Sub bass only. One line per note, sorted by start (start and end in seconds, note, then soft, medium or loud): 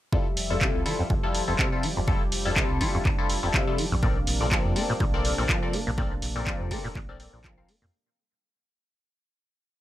0.37 0.69 F1 medium
0.75 0.83 C2 medium
1.10 1.42 F1 medium
1.48 1.56 F1 medium
1.97 2.27 F1 medium
2.32 2.64 F1 loud
2.70 2.78 C2 medium
3.05 3.37 F1 medium
3.43 3.51 F1 medium
3.92 4.22 A#1 medium
4.27 4.59 A#1 loud
4.65 4.73 F2 medium
5.00 5.32 A#1 loud
5.38 5.46 A#1 medium
5.87 6.18 A#1 medium
6.22 6.54 A#1 medium
6.60 6.68 F2 medium
6.95 7.27 A#1 loud
7.33 7.64 A#1 loud
7.82 7.90 F2 medium